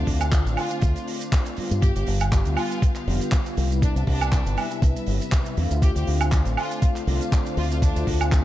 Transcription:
Already playing: D3 A3 C4 D4 F4 C5 F5
0.07 D2, kick, open hi-hat
0.21 closed hi-hat, high woodblock, shaker
0.32 kick, clap, closed hi-hat, shaker
0.46 A1, closed hi-hat, shaker
0.57 F4, open hi-hat, high woodblock
0.70 D3 A3 C4 F4, closed hi-hat, shaker
0.81 D2, kick, closed hi-hat, shaker
0.96 closed hi-hat, shaker
1.07 open hi-hat
1.21 closed hi-hat, shaker
1.32 kick, clap, closed hi-hat, shaker
1.46 closed hi-hat, shaker
1.57 D3 G3 B3 F4, muted fingered electric bass stroke, open hi-hat
1.71 G2, closed hi-hat, shaker
1.82 B3 G4 F5, kick, closed hi-hat, shaker
1.96 G1 G4, closed hi-hat, shaker
2.07 G1, open hi-hat
2.20 closed hi-hat, high woodblock, shaker
2.32 kick, clap, closed hi-hat, shaker
2.45 D2, closed hi-hat, shaker
2.57 F4, open hi-hat, high woodblock
2.71 closed hi-hat, shaker
2.82 kick, closed hi-hat, shaker
2.95 clap, closed hi-hat, shaker
3.06 F1 D3 G3 B3 F4, open hi-hat
3.21 closed hi-hat, shaker
3.32 kick, clap, closed hi-hat, shaker
3.46 closed hi-hat, shaker
3.57 C2, open hi-hat
3.70 C3 G3 B3 E4, closed hi-hat, shaker
3.82 D4 B4 E5, kick, closed hi-hat, shaker
3.96 C2 D4, closed hi-hat, shaker
4.07 C2 D4, kick, open hi-hat
4.21 closed hi-hat, high woodblock, shaker
4.32 kick, clap, closed hi-hat, shaker
4.46 G1, closed hi-hat, shaker
4.57 open hi-hat, high woodblock
4.70 C3 G3 B3 E4, closed hi-hat, shaker
4.82 C2, kick, closed hi-hat, shaker
4.96 closed hi-hat, shaker
5.07 G1, open hi-hat
5.21 closed hi-hat, shaker
5.32 kick, clap, closed hi-hat, shaker
5.46 closed hi-hat, shaker
5.57 E2 D3 A3 C4 F4, open hi-hat
5.71 D2, closed hi-hat, shaker
5.82 D4 G4 C5 F5, kick, closed hi-hat, shaker
5.96 D2 G4, closed hi-hat, shaker
6.07 D2, open hi-hat
6.21 closed hi-hat, high woodblock, shaker
6.31 kick, clap, closed hi-hat, shaker
6.45 A1, closed hi-hat, shaker
6.57 F4, open hi-hat, high woodblock
6.71 closed hi-hat, shaker
6.82 kick, closed hi-hat, shaker
6.96 clap, closed hi-hat, shaker
7.06 C2 D3 A3 C4 F4, open hi-hat
7.21 closed hi-hat, shaker
7.32 kick, clap, closed hi-hat, shaker
7.46 closed hi-hat, shaker
7.57 D2 F4, open hi-hat
7.70 D3 A3 C4 F4, closed hi-hat, shaker
7.81 D4, kick, closed hi-hat, shaker
7.96 D2, closed hi-hat, shaker
8.07 D2, kick, open hi-hat
8.21 closed hi-hat, high woodblock, shaker
8.32 kick, clap, closed hi-hat, shaker

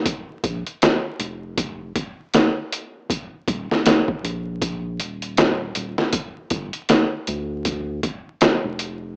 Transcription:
0.06 kick, closed hi-hat
0.44 A#1, kick, closed hi-hat
0.66 closed hi-hat
0.82 snare, closed hi-hat
1.19 F1, closed hi-hat
1.58 kick, closed hi-hat
1.96 kick, closed hi-hat
2.34 snare, closed hi-hat
2.72 closed hi-hat
3.10 kick, closed hi-hat
3.48 D#1, kick, closed hi-hat
3.71 snare
3.86 snare, closed hi-hat
4.08 kick
4.24 A#1, closed hi-hat
4.62 kick, closed hi-hat
4.99 D#1, closed hi-hat
5.22 closed hi-hat
5.37 snare, closed hi-hat
5.75 D#1, closed hi-hat
5.98 snare
6.13 kick, closed hi-hat
6.50 G1, kick, closed hi-hat
6.73 closed hi-hat
6.89 snare, closed hi-hat
7.27 D2, closed hi-hat
7.65 kick, closed hi-hat
8.03 kick, closed hi-hat
8.41 snare, closed hi-hat
8.64 F1
8.79 closed hi-hat

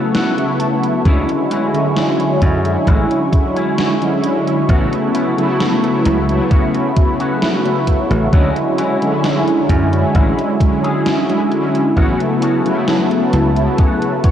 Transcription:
Already playing: C#3 F#3 A3 B3 C#4 E4 F#4 B4 E5 A5 C#6
0.14 F#5, snare, closed hi-hat
0.37 C#3 F#3 A3 B3 E4, closed hi-hat
0.60 A5, closed hi-hat
0.83 closed hi-hat
1.04 D2 D3 F#3 G#3 C#4 E4 F#4 E5 G#5, kick, closed hi-hat
1.29 closed hi-hat
1.50 G#3 C#4 E4 F#4, closed hi-hat
1.73 D3 F#3 G#3 C#4 E4, closed hi-hat
1.97 snare, closed hi-hat
2.20 muted clean electric guitar stroke, closed hi-hat
2.42 F#2, kick, closed hi-hat
2.64 D3 F#3 G#3 C#4 E4, closed hi-hat
2.87 A1 G#3 C#4 E4 F#4, kick, closed hi-hat
3.11 closed hi-hat
3.31 D3 F#3 G#3 C#4 E4, kick, closed hi-hat
3.55 G#3 C#4 E4 G#4, closed hi-hat
3.78 snare, closed hi-hat
4.01 D3 F#3 G#3 C#4 E4, closed hi-hat
4.24 closed hi-hat
4.47 closed hi-hat
4.68 A1 C#3 F#3 A3 B3 C#4 E4 F#4 B4 A5, kick, closed hi-hat
4.93 closed hi-hat
5.14 B3 C#4 E4, closed hi-hat
5.37 C#3 F#3 A3 B3 E4, closed hi-hat
5.60 snare, closed hi-hat
5.82 muted clean electric guitar stroke, closed hi-hat
6.05 C#2, closed hi-hat
6.28 C#3 F#3 A3 B3 E4, closed hi-hat
6.50 B3 C#4 F#4 B5, kick, closed hi-hat
6.74 closed hi-hat
6.95 C#3 F#3 A3 B3 E4, kick, closed hi-hat
7.19 B3 C#4 F#4, closed hi-hat
7.42 snare, closed hi-hat
7.64 C#3 F#3 A3 B3 E4, closed hi-hat
7.87 kick, closed hi-hat
8.10 A1, closed hi-hat
8.32 D2 D3 F#3 G#3 C#4 E4 F#4 E5 G#5, kick, closed hi-hat
8.56 closed hi-hat
8.78 G#3 C#4 E4 F#4, closed hi-hat
9.01 D3 F#3 G#3 C#4 E4, closed hi-hat
9.24 snare, closed hi-hat
9.47 muted clean electric guitar stroke, closed hi-hat
9.69 F#2, kick, closed hi-hat
9.92 D3 F#3 G#3 C#4 E4, closed hi-hat
10.14 A1 G#3 C#4 E4 F#4, kick, closed hi-hat
10.39 closed hi-hat
10.59 D3 F#3 G#3 C#4 E4, kick, closed hi-hat
10.83 G#3 C#4 E4 G#4, closed hi-hat
11.06 snare, closed hi-hat
11.28 D3 F#3 G#3 C#4 E4, closed hi-hat
11.52 closed hi-hat
11.75 closed hi-hat
11.96 A1 C#3 F#3 A3 B3 C#4 E4 F#4 B4 A5, kick, closed hi-hat
12.20 closed hi-hat
12.42 B3 C#4 F#4, closed hi-hat
12.65 C#3 F#3 A3 B3 E4, closed hi-hat
12.88 snare, closed hi-hat
13.11 muted clean electric guitar stroke, closed hi-hat
13.33 C#2, closed hi-hat
13.55 C#3 F#3 A3 B3 E4, closed hi-hat
13.78 B3 C#4 F#4, kick, closed hi-hat
14.02 closed hi-hat
14.23 C#3 F#3 A3 B3 E4 C#5, kick, closed hi-hat

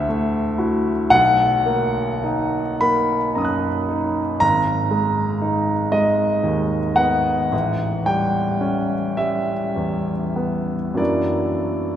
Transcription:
Already playing: D2 E5
0.09 A3
0.58 E4 F#4
1.10 B1 F#5
1.66 A#3
2.24 D#4
2.81 A#3 B5
3.35 F#2 A#5 D#6
3.42 D#6 F#6
3.89 D#4
4.40 G#1 A#5
4.91 G#3
5.42 D#4
5.92 G#3 D#5
6.44 D#2
6.96 B3 F#5
7.52 A1
8.06 G3 G5
8.61 C#4
9.17 G3 E5
9.76 E2
10.36 B3
10.94 F#2 F#3 A#3 D4 E4 D5

